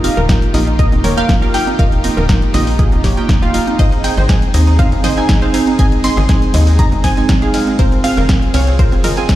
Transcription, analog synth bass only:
0.17 0.47 D#1 loud
0.54 0.84 A#1 loud
0.92 1.22 D#1 medium
1.29 1.37 D#1 loud
1.79 2.09 D#1 loud
2.17 2.47 D#1 loud
2.54 2.84 A#1 loud
2.92 3.22 D#1 medium
3.29 3.59 D#1 medium
3.79 4.09 G#1 loud
4.17 4.47 G#1 loud
4.54 4.84 D#2 loud
4.92 5.22 G#1 medium
5.29 5.37 G#1 loud
5.79 6.09 G#1 loud
6.17 6.47 G#1 loud
6.54 6.84 D#2 loud
6.92 7.22 G#1 medium
7.29 7.37 G#1 loud
7.79 8.09 F1 loud
8.17 8.47 F1 loud
8.54 8.84 C2 loud
8.92 9.22 F1 medium
9.29 9.36 F1 loud

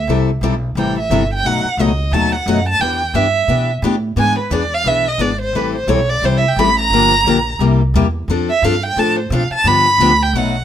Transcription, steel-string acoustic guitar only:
0.09 0.29 C3 medium
0.09 0.29 E3 medium
0.09 0.30 G3 medium
0.09 0.29 C4 medium
0.09 0.30 E4 medium
0.09 0.29 A4 medium
0.43 0.54 C3 medium
0.43 0.54 E3 medium
0.43 0.54 G3 medium
0.43 0.54 C4 medium
0.43 0.54 E4 medium
0.43 0.54 A4 medium
0.77 0.97 C3 medium
0.77 0.97 E3 medium
0.77 0.97 G3 medium
0.77 0.98 C4 medium
0.77 0.98 E4 medium
0.77 0.98 A4 medium
1.11 1.22 C3 medium
1.11 1.22 E3 medium
1.11 1.22 G3 medium
1.11 1.22 C4 medium
1.11 1.22 E4 medium
1.11 1.23 A4 medium
1.45 1.65 B2 medium
1.45 1.66 F#3 medium
1.45 1.66 A3 medium
1.45 1.66 D#4 medium
1.45 1.66 F#4 medium
1.79 1.90 B2 medium
1.79 1.90 F#3 medium
1.79 1.90 A3 medium
1.79 1.90 D#4 medium
1.79 1.91 F#4 medium
2.13 2.33 B2 medium
2.13 2.34 F#3 medium
2.13 2.34 A3 medium
2.13 2.34 D#4 medium
2.13 2.34 F#4 medium
2.48 2.58 B2 medium
2.48 2.58 F#3 medium
2.48 2.58 A3 medium
2.48 2.59 D#4 medium
2.48 2.59 F#4 medium
2.81 3.01 E3 medium
2.81 3.02 B3 medium
2.81 3.02 D4 medium
2.81 3.02 G4 medium
3.14 3.26 E3 medium
3.14 3.26 B3 medium
3.14 3.26 D4 medium
3.14 3.26 G4 loud
3.48 3.69 E3 medium
3.48 3.70 B3 medium
3.48 3.70 D4 medium
3.48 3.70 G4 medium
3.84 3.94 E3 medium
3.84 3.94 B3 medium
3.84 3.95 D4 medium
3.84 3.95 G4 medium
4.17 4.38 E3 medium
4.17 4.37 B3 medium
4.17 4.38 D4 medium
4.17 4.38 G#4 medium
4.51 4.62 E3 medium
4.51 4.63 B3 medium
4.51 4.63 D4 medium
4.51 4.63 G#4 medium
4.86 5.06 E3 medium
4.86 5.06 B3 medium
4.86 5.07 D4 medium
4.86 5.07 G#4 medium
5.19 5.30 E3 medium
5.19 5.31 B3 medium
5.19 5.31 D4 medium
5.19 5.31 G#4 loud
5.55 5.75 E3 medium
5.55 5.75 G3 medium
5.55 5.75 C4 medium
5.55 5.75 E4 medium
5.55 5.76 A4 medium
5.88 5.99 E3 medium
5.88 5.99 G3 medium
5.88 5.99 C4 medium
5.88 5.99 E4 medium
5.88 5.99 A4 loud
6.23 6.43 E3 medium
6.23 6.43 G3 medium
6.23 6.43 C4 medium
6.23 6.44 E4 medium
6.23 6.44 A4 medium
6.59 6.69 E3 medium
6.59 6.69 G3 medium
6.59 6.69 C4 medium
6.59 6.69 E4 medium
6.59 6.69 A4 loud
6.93 7.12 D3 medium
6.93 7.13 F3 medium
6.93 7.13 A#3 medium
6.93 7.13 D4 medium
6.93 7.13 G4 medium
7.26 7.37 D3 medium
7.26 7.37 F3 medium
7.26 7.37 A#3 medium
7.26 7.37 D4 loud
7.26 7.37 G4 loud
7.60 7.80 C3 medium
7.60 7.80 G3 medium
7.60 7.81 A#3 medium
7.60 7.81 E4 medium
7.60 7.81 G4 medium
7.95 8.06 C3 medium
7.95 8.05 G3 medium
7.95 8.06 A#3 medium
7.95 8.06 E4 medium
7.95 8.06 G4 loud
8.30 8.49 F3 medium
8.30 8.50 C4 medium
8.30 8.49 D4 medium
8.30 8.50 A4 medium
8.64 8.74 F3 medium
8.64 8.74 C4 medium
8.64 8.74 D4 loud
8.64 8.74 A4 loud
8.97 9.17 F3 medium
8.97 9.18 C4 medium
8.97 9.18 D4 medium
8.97 9.18 A4 medium
9.32 9.42 F3 medium
9.32 9.42 C4 medium
9.32 9.43 D4 medium
9.32 9.43 A4 loud
9.65 9.85 D3 medium
9.65 9.86 F3 medium
9.65 9.86 B3 medium
9.65 9.86 D4 medium
9.65 9.87 G4 medium
10.00 10.11 D3 medium
10.00 10.11 F3 loud
10.00 10.11 B3 loud
10.00 10.11 D4 loud
10.00 10.11 G4 loud
10.35 10.55 B2 medium
10.35 10.55 F#3 medium
10.35 10.55 A3 medium
10.35 10.55 D#4 medium
10.35 10.55 F#4 medium

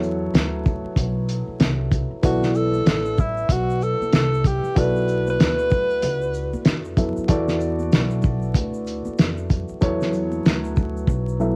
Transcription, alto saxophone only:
2.25 2.58 F#4 medium
2.56 3.21 A4 loud
3.20 3.53 E4 medium
3.52 3.85 F#4 loud
3.83 4.14 A4 medium
4.16 4.49 A4 loud
4.47 4.80 G4 medium
4.79 5.28 B4 loud
5.30 6.95 B4 loud

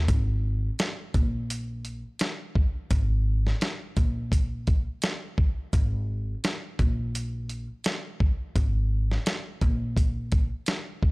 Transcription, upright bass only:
0.09 0.68 G#1 loud
1.15 2.01 A#1 medium
2.91 3.51 G#1 loud
3.97 4.84 A#1 medium
5.73 6.33 G#1 loud
6.80 7.66 A#1 medium
8.56 9.16 G#1 loud
9.62 10.48 A#1 loud

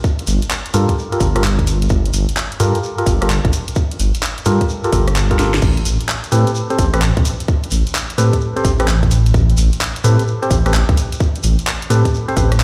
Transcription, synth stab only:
0.74 0.93 F4 medium
0.74 0.93 G4 medium
0.74 0.93 A4 medium
0.74 0.93 A#4 medium
1.12 1.27 F4 medium
1.12 1.27 G4 medium
1.12 1.27 A4 medium
1.12 1.27 A#4 medium
1.35 1.43 F4 medium
1.35 1.43 G4 medium
1.35 1.43 A4 medium
1.35 1.43 A#4 medium
2.60 2.79 F4 medium
2.60 2.79 G4 medium
2.60 2.79 A4 medium
2.60 2.79 A#4 medium
2.98 3.13 F4 medium
2.98 3.13 G4 medium
2.98 3.13 A4 medium
2.98 3.13 A#4 medium
3.21 3.29 F4 medium
3.21 3.29 G4 medium
3.21 3.29 A4 medium
3.21 3.29 A#4 loud
4.46 4.65 F4 medium
4.46 4.65 G4 medium
4.46 4.65 A4 medium
4.46 4.65 A#4 medium
4.84 4.91 F4 medium
4.84 4.91 G4 medium
4.84 4.91 A4 medium
4.84 4.91 A#4 medium
4.92 5.06 F4 medium
4.92 5.06 G4 medium
4.92 5.06 A4 medium
4.92 5.06 A#4 medium
5.31 5.37 F4 medium
5.31 5.37 G4 medium
5.31 5.37 A4 medium
5.31 5.37 A#4 medium
5.39 5.53 F4 loud
5.39 5.53 G4 medium
5.39 5.53 A4 medium
5.39 5.53 A#4 loud
6.32 6.51 C4 medium
6.32 6.51 G4 medium
6.32 6.51 A4 medium
6.32 6.51 B4 medium
6.70 6.85 C4 medium
6.70 6.85 G4 medium
6.70 6.85 A4 medium
6.70 6.85 C5 medium
6.93 7.01 C4 medium
6.93 7.01 G4 medium
6.93 7.01 A4 medium
6.93 7.01 B4 loud
8.18 8.37 C4 medium
8.18 8.37 G4 medium
8.18 8.37 A4 medium
8.18 8.37 B4 medium
8.56 8.71 C4 medium
8.56 8.71 G4 medium
8.56 8.71 A4 medium
8.56 8.71 C5 medium
8.80 8.87 C4 medium
8.80 8.87 G4 medium
8.80 8.87 A4 medium
8.80 8.87 B4 medium
10.04 10.23 C4 medium
10.04 10.23 G4 medium
10.04 10.23 A4 medium
10.04 10.23 B4 medium
10.42 10.57 C4 medium
10.42 10.57 G4 medium
10.42 10.57 A4 medium
10.42 10.57 C5 medium
10.66 10.73 C4 medium
10.66 10.73 G4 medium
10.66 10.73 A4 medium
10.66 10.73 B4 medium
11.90 12.09 C4 medium
11.90 12.09 G4 medium
11.90 12.09 A4 medium
11.90 12.09 B4 medium
12.28 12.35 C4 medium
12.28 12.35 G4 medium
12.28 12.35 A4 medium
12.28 12.35 C5 medium
12.36 12.50 C4 medium
12.36 12.50 G4 medium
12.36 12.50 A4 medium
12.36 12.50 B4 medium

